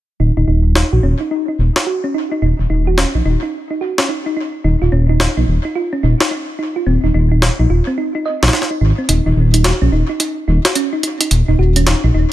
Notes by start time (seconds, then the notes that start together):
0.20 D#1 D#4
0.37 D#1 D#4
0.48 D#1 D#4
0.75 D#4, snare
0.93 A#1 F#4
1.03 D#1 C#4
1.20 D#4
1.31 D#4
1.48 D#4
1.59 D#1
1.76 D#4, snare
1.87 F#4
2.04 C#4
2.14 D#4
2.32 D#4
2.42 D#1 D#4
2.59 D#1
2.70 D#1 D#4
2.87 F#4
2.98 C#4, snare
3.15 A#1 D#4
3.25 D#1 D#4
3.43 D#4
3.70 D#4
3.81 F#4
3.98 C#4, snare
4.09 D#4
4.26 D#4
4.37 D#4
4.64 D#1 D#4
4.82 D#1 F4
4.92 D#1 C#4
5.09 D#4
5.20 D#4, snare
5.37 A#1 D#4
5.48 D#1
5.65 D#4
5.75 F4
5.93 C#4
6.03 D#1 D#4
6.20 D#4, snare
6.31 D#4
6.59 D#4
6.76 F4
6.86 D#1 C4
7.04 D#1 D#4
7.14 D#1 D#4
7.32 D#4
7.42 snare
7.59 A#1 D#4
7.70 D#1 F4
7.87 C4
7.98 D#4
8.15 D#4
8.26 D#5
8.43 A#1 D#4, snare
8.48 snare
8.53 D#4, snare
8.62 snare
8.71 D#4
8.81 G#1 D#4
8.98 C4
9.09 D#1 D#4, closed hi-hat
9.26 D#1 D#4
9.37 D#1
9.54 D#4, closed hi-hat
9.64 F#4, snare, closed hi-hat
9.82 A#1 C#4
9.92 D#1 D#4
10.09 D#4
10.20 D#4, closed hi-hat
10.48 D#1 D#4
10.65 F#4, snare, closed hi-hat
10.75 C#4, closed hi-hat
10.93 D#4
11.03 D#4, closed hi-hat
11.20 D#4, closed hi-hat
11.31 D#1, closed hi-hat
11.48 D#1 D#4
11.59 D#1 F#4
11.76 C#4, closed hi-hat
11.87 D#4, snare, closed hi-hat
12.04 A#1 D#4
12.14 D#1 D#4